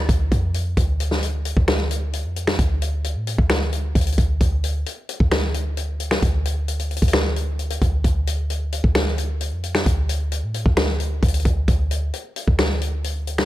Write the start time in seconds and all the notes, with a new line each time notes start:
0.09 D2, kick, closed hi-hat
0.32 F2, kick, closed hi-hat
0.54 closed hi-hat
0.77 D2, kick, closed hi-hat
1.00 closed hi-hat
1.11 snare
1.23 closed hi-hat
1.45 closed hi-hat
1.57 D2, kick
1.68 finger snap, snare
1.91 closed hi-hat
2.13 closed hi-hat
2.25 F2
2.36 closed hi-hat
2.47 finger snap, snare
2.59 D2, kick, closed hi-hat
2.82 closed hi-hat
3.04 closed hi-hat
3.16 A2
3.27 closed hi-hat
3.38 D2, kick
3.50 finger snap, snare
3.73 closed hi-hat
3.95 D2, kick, closed hi-hat
4.01 closed hi-hat
4.07 closed hi-hat
4.12 closed hi-hat
4.18 D2, kick, closed hi-hat
4.41 D2, kick, closed hi-hat
4.64 closed hi-hat
4.86 closed hi-hat
5.09 closed hi-hat
5.20 D2, kick
5.32 finger snap, snare
5.54 closed hi-hat
5.77 closed hi-hat
6.00 closed hi-hat
6.11 finger snap, snare
6.23 D2, kick, closed hi-hat
6.45 closed hi-hat
6.68 closed hi-hat
6.79 closed hi-hat
6.91 closed hi-hat
6.96 closed hi-hat
7.02 D2, kick, closed hi-hat
7.08 closed hi-hat
7.13 finger snap, snare
7.36 closed hi-hat
7.59 closed hi-hat
7.70 closed hi-hat
7.81 D2, kick, closed hi-hat
8.04 D2, kick, closed hi-hat
8.27 closed hi-hat
8.50 closed hi-hat
8.72 closed hi-hat
8.84 D2, kick
8.95 finger snap, snare
9.18 closed hi-hat
9.41 closed hi-hat
9.52 F2
9.64 closed hi-hat
9.75 finger snap, snare
9.86 D2, kick, closed hi-hat
10.09 closed hi-hat
10.32 closed hi-hat
10.43 A2
10.54 closed hi-hat
10.66 D2, kick
10.77 finger snap, snare
11.00 closed hi-hat
11.23 D2, kick, closed hi-hat
11.28 closed hi-hat
11.34 closed hi-hat
11.40 closed hi-hat
11.45 D2, kick, closed hi-hat
11.68 D2, kick, closed hi-hat
11.91 closed hi-hat
12.14 closed hi-hat
12.36 closed hi-hat
12.48 D2, kick
12.59 finger snap, snare
12.82 closed hi-hat
13.04 closed hi-hat
13.27 closed hi-hat
13.38 finger snap, snare